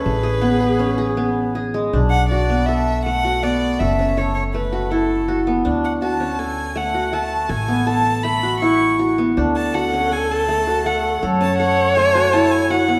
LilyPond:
<<
  \new Staff \with { instrumentName = "Violin" } { \time 5/4 \key b \dorian \tempo 4 = 162 b'1 r4 | r8 fis''8 d''4 e''4 fis''4 d''4 | e''4 cis''8 cis''8 b'4 a'4. r8 | r8 fis''8 a''4 gis''4 fis''4 a''4 |
gis''4 a''4 b''4 cis'''4. r8 | r8 a''8 fis''4 gis''8 a''4. fis''4 | r8 a''8 fis''4 gis''4 a''8 gis''8 fis''4 | }
  \new Staff \with { instrumentName = "Viola" } { \time 5/4 \key b \dorian gis'1~ gis'8 r8 | r1 r4 | r1 r4 | r1 r4 |
r1 r4 | a'1~ a'4 | cis''1~ cis''4 | }
  \new Staff \with { instrumentName = "Qanun" } { \time 5/4 \key b \dorian cis'8 gis'8 b8 gis'8 cis'8 gis'8 b4 gis'8 gis8 | d'4 fis'8 b8 a'4 a8 fis'8 b4 | a'8 cis'8 a'4 a8 fis'8 e'4 fis'8 b8 | d'4 fis'8 cis'8 a'4 a8 fis'8 a4 |
a'8 b8 a'4 a8 fis'8 e'4 fis'8 b8 | d'4 fis'8 cis'8 a'4 a8 fis'8 a4 | a'8 cis'8 a'4 a8 fis'8 e'4 fis'8 b8 | }
  \new Staff \with { instrumentName = "Upright bass" } { \clef bass \time 5/4 \key b \dorian a,,1~ a,,4 | b,,1~ b,,4 | fis,,1~ fis,,4 | d,1~ d,4 |
a,,1~ a,,4 | d,1~ d,4 | fis,1~ fis,4 | }
>>